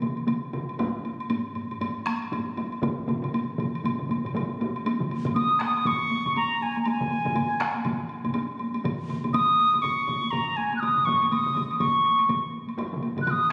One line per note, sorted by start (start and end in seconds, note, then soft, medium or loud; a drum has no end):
0.02 taiko mid medium
0.02 taiko high medium
0.02 high woodblock soft
0.17 taiko high soft
0.17 high woodblock soft
0.27 taiko mid medium
0.27 taiko high medium
0.27 high woodblock soft
0.43 taiko high soft
0.53 taiko medium
0.53 taiko mid loud
0.53 taiko high soft
0.53 high woodblock soft
0.69 taiko high soft
0.69 high woodblock soft
0.79 taiko medium
0.79 taiko low-mid medium
0.79 taiko high medium
0.79 high woodblock medium
0.94 taiko high soft
1.04 taiko high soft
1.04 high woodblock soft
1.20 high woodblock soft
1.30 taiko low-mid medium
1.30 taiko high medium
1.30 high woodblock medium
1.46 taiko high soft
1.55 taiko low-mid medium
1.55 taiko high soft
1.55 high woodblock soft
1.71 taiko low-mid medium
1.71 taiko high soft
1.71 high woodblock soft
1.81 taiko low-mid loud
1.81 taiko high medium
1.81 high woodblock medium
1.97 taiko high soft
2.06 taiko rim medium
2.06 taiko high medium
2.06 high woodblock soft
2.22 taiko high soft
2.22 high woodblock soft
2.32 taiko low-mid loud
2.32 taiko high medium
2.32 high woodblock soft
2.47 taiko high soft
2.57 taiko medium
2.57 taiko high medium
2.57 high woodblock soft
2.72 taiko high soft
2.72 high woodblock soft
2.82 taiko medium
2.82 taiko low-mid medium
2.82 taiko mid medium
2.82 taiko high medium
2.82 high woodblock soft
2.98 taiko high soft
3.08 taiko low-mid medium
3.08 taiko mid loud
3.08 taiko high soft
3.08 high woodblock soft
3.22 taiko low-mid loud
3.22 taiko mid medium
3.22 high woodblock soft
3.34 taiko high medium
3.34 high woodblock medium
3.49 taiko high soft
3.58 taiko low-mid medium
3.58 taiko mid medium
3.58 taiko high soft
3.58 high woodblock soft
3.74 taiko high soft
3.74 high woodblock soft
3.84 taiko low-mid medium
3.84 taiko mid medium
3.84 taiko high medium
3.84 high woodblock medium
3.99 taiko low-mid medium
3.99 taiko mid medium
3.99 taiko high soft
4.09 taiko low-mid medium
4.09 taiko mid medium
4.09 taiko high soft
4.09 high woodblock soft
4.24 taiko low-mid medium
4.24 taiko mid medium
4.24 high woodblock soft
4.34 taiko low-mid medium
4.34 taiko mid medium
4.34 taiko high medium
4.34 high woodblock soft
4.50 taiko high soft
4.60 taiko medium
4.60 taiko high medium
4.60 high woodblock soft
4.76 taiko high soft
4.76 high woodblock soft
4.86 taiko high medium
4.86 high woodblock medium
5.00 taiko low-mid medium
5.00 taiko mid medium
5.11 taiko high medium
5.11 high woodblock soft
5.25 taiko low-mid loud
5.25 taiko mid medium
5.25 taiko high medium
5.25 high woodblock soft
5.34 5.59 D#6 medium
5.34 taiko low-mid medium
5.34 taiko mid medium
5.34 taiko high medium
5.34 high woodblock medium
5.60 5.88 D#6 medium
5.60 taiko rim medium
5.60 taiko high medium
5.60 high woodblock soft
5.77 taiko high medium
5.77 high woodblock soft
5.85 6.36 C#6 medium
5.85 taiko low-mid loud
5.85 taiko mid loud
5.85 taiko high medium
5.85 high woodblock medium
6.10 taiko high medium
6.10 high woodblock soft
6.25 taiko low-mid medium
6.25 taiko mid medium
6.25 taiko high medium
6.25 high woodblock soft
6.36 6.64 A#5 medium
6.36 taiko high medium
6.36 high woodblock soft
6.61 6.82 G#5 medium
6.61 taiko high medium
6.61 high woodblock soft
6.76 taiko high medium
6.76 high woodblock soft
6.82 6.89 A#5 soft
6.82 taiko high medium
6.82 high woodblock soft
6.88 7.87 G#5 medium
7.01 taiko low-mid medium
7.01 taiko mid medium
7.10 taiko high medium
7.10 high woodblock soft
7.25 taiko low-mid loud
7.25 taiko mid medium
7.25 taiko high medium
7.25 high woodblock soft
7.35 taiko low-mid medium
7.35 taiko mid medium
7.35 taiko high medium
7.35 high woodblock medium
7.60 taiko rim medium
7.60 taiko high medium
7.60 high woodblock soft
7.75 taiko high medium
7.75 high woodblock soft
7.85 taiko low-mid loud
7.85 taiko mid medium
7.85 taiko high medium
7.85 high woodblock medium
8.09 high woodblock soft
8.25 taiko low-mid medium
8.25 taiko mid medium
8.25 taiko high medium
8.25 high woodblock soft
8.34 taiko high medium
8.34 high woodblock medium
8.59 taiko high medium
8.59 high woodblock soft
8.74 taiko high medium
8.74 high woodblock soft
8.84 taiko low-mid loud
8.84 taiko mid medium
8.84 taiko high medium
8.84 high woodblock medium
9.09 taiko low-mid medium
9.09 taiko mid medium
9.09 taiko high medium
9.09 high woodblock soft
9.24 taiko low-mid medium
9.24 taiko mid medium
9.24 taiko high medium
9.24 high woodblock soft
9.33 9.83 D#6 loud
9.33 taiko low-mid medium
9.33 taiko mid medium
9.33 taiko high medium
9.33 high woodblock medium
9.58 taiko high medium
9.58 high woodblock soft
9.73 taiko low-mid medium
9.73 taiko mid medium
9.73 taiko high medium
9.73 high woodblock soft
9.82 10.32 C#6 medium
9.82 taiko low-mid loud
9.82 taiko mid loud
9.82 taiko high medium
9.82 high woodblock medium
10.08 taiko low-mid loud
10.08 taiko mid medium
10.08 taiko high medium
10.08 high woodblock soft
10.22 taiko high medium
10.22 high woodblock soft
10.31 10.58 A#5 medium
10.31 taiko low-mid loud
10.31 taiko mid loud
10.31 taiko high medium
10.31 high woodblock soft
10.57 10.76 G#5 medium
10.57 taiko high soft
10.57 high woodblock soft
10.72 taiko high medium
10.72 high woodblock soft
10.77 11.07 D#6 medium
10.77 10.82 F#6 medium
10.82 taiko low-mid medium
10.82 taiko mid medium
10.82 taiko high medium
10.82 high woodblock soft
10.97 taiko low-mid medium
10.97 taiko mid medium
11.05 11.29 C#6 medium
11.05 taiko low-mid loud
11.05 taiko mid loud
11.05 taiko high soft
11.05 high woodblock soft
11.22 taiko high soft
11.22 high woodblock soft
11.30 11.76 D#6 medium
11.30 taiko low-mid medium
11.30 taiko mid medium
11.30 taiko high medium
11.30 high woodblock medium
11.46 taiko low-mid medium
11.46 taiko mid medium
11.56 taiko low-mid loud
11.56 taiko mid medium
11.56 taiko high soft
11.56 high woodblock soft
11.71 taiko high soft
11.71 high woodblock soft
11.79 12.49 C#6 medium
11.79 taiko low-mid loud
11.79 taiko mid medium
11.79 taiko high medium
11.79 high woodblock medium
12.05 taiko high soft
12.05 high woodblock soft
12.19 taiko high soft
12.19 high woodblock soft
12.29 taiko low-mid loud
12.29 taiko mid loud
12.29 taiko high medium
12.29 high woodblock medium
12.53 taiko high soft
12.68 taiko high soft
12.68 high woodblock soft
12.78 taiko medium
12.78 taiko high medium
12.78 high woodblock medium
12.92 taiko low-mid medium
12.92 taiko mid medium
13.02 taiko high soft
13.02 high woodblock soft
13.17 taiko low-mid loud
13.17 taiko mid medium
13.17 taiko high soft
13.17 high woodblock soft
13.22 13.32 F#6 medium
13.27 13.51 D#6 medium
13.27 taiko low-mid medium
13.27 taiko mid medium
13.27 taiko high medium
13.27 high woodblock medium